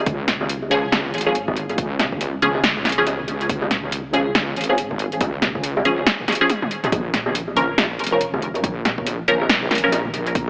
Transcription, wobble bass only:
0.07 C#2
1.14 G#1
1.78 C#2
2.12 C#2
3.49 C#2
4.56 G#1
5.21 C#2
5.55 C#2
6.92 A#1
7.99 F1
8.64 A#1
8.98 A#1
10.35 A#1

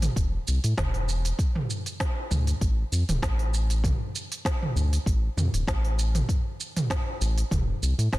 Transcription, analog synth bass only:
0.16 E1
0.48 C2
0.64 A2
0.78 E1
2.31 D2
2.61 A1
2.92 F2
3.08 D1
3.23 A1
4.76 D2
5.06 A1
5.37 F2
5.53 D1
5.67 A1
7.21 A1
7.51 E1
7.82 C2
7.98 A2
8.13 E1

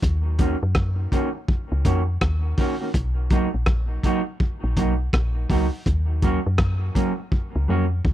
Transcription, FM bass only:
0.03 D#2
0.63 F#2
1.72 C#2
1.86 F2
2.22 D#2
2.95 B1
3.54 A#1
4.64 A#1
4.77 B1
5.14 A#1
5.50 C#2
5.87 D#2
6.46 F#2
7.56 C#2
7.70 F2
8.05 D#2

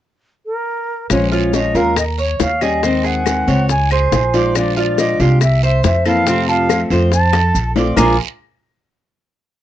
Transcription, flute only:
0.46 A#4
1.10 C#5
1.32 C#5
1.54 D#5
1.77 F5
1.98 D#5
2.20 C#5
2.41 F5
2.62 D#5
3.06 F#5
3.70 G#5
3.92 C5
4.56 D5
4.77 D5
4.99 D#5
5.20 F5
5.42 E5
5.64 E5
5.85 E5
6.07 F5
6.49 F5
7.13 A5
7.97 D6

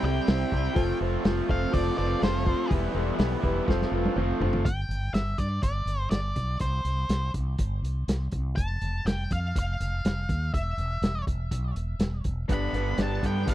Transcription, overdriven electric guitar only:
0.04 C3 G3 C4 E4
0.27 C3 G3 C4 E4
0.52 C3 G3 C4 E4
0.74 F3 A3 C4 F4
1.01 F3 A3 C4 F4
1.24 F3 A3 C4 F4
1.49 F3 A3 C4 F4
1.72 F3 A3 C4 F4
1.97 F3 A3 C4 F4
2.19 F3 A3 C4 F4
2.44 F3 A3 C4 F4
2.69 E3 G3 B3 E4
2.93 E3 G3 B3 E4
3.17 E3 G3 B3 E4
3.40 E3 G3 B3 E4
3.66 F3 A3 C4 F4
3.92 F3 A3 C4 F4
4.16 F3 A3 C4 F4
4.40 F3 A3 C4 F4
12.48 G2 D3 G3 B3 D4
12.74 G2 D3 G3 B3 D4
12.98 G2 D3 G3 B3 D4
13.22 G2 D3 G3 B3 D4
13.46 G2 D3 G3 B3 D4

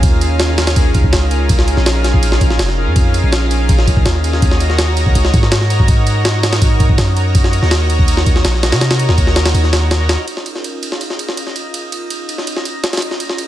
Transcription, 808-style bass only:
Already playing: D#2
1.13 C#2
1.77 A#1
2.59 F1
2.87 F2
3.24 A#1
3.97 A#1
4.06 D#2
4.42 D#2
5.15 C#2
5.34 G#2
6.98 F#2
7.62 D#2
8.45 A#1
8.72 C3
9.09 D#2
9.54 D#2

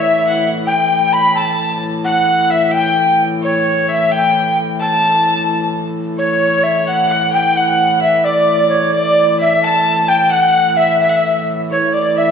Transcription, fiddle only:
0.00 E5
0.27 F#5
0.66 G5
1.13 B5
1.37 A5
2.05 F#5
2.50 E5
2.72 G5
3.42 C#5
3.89 E5
4.11 G5
4.80 A5
6.18 C#5
6.87 F#5
7.09 F#5
7.32 G5
7.57 F#5
8.02 E5
8.26 D5
8.94 D5
9.40 E5
9.64 A5
10.09 G5
10.31 F#5
10.40 G5
10.47 F#5
10.79 E5
11.03 E5
11.09 F#5
11.16 E5
11.71 C#5
11.94 D5
12.17 E5

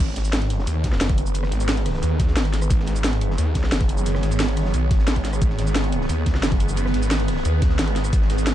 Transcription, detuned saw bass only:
0.00 G#1
0.16 G#1
0.67 D#2
1.01 F#1
1.52 G#1
2.03 D#2
2.37 G#1
2.71 G#1
2.87 G#1
3.38 D#2
3.72 F#1
4.23 G#1
4.74 B1
4.91 G#1
5.42 G#1
5.59 G#1
6.10 D#2
6.43 F#1
6.94 G#1
7.45 D#2
7.79 G#1
8.13 G#1
8.30 G#1

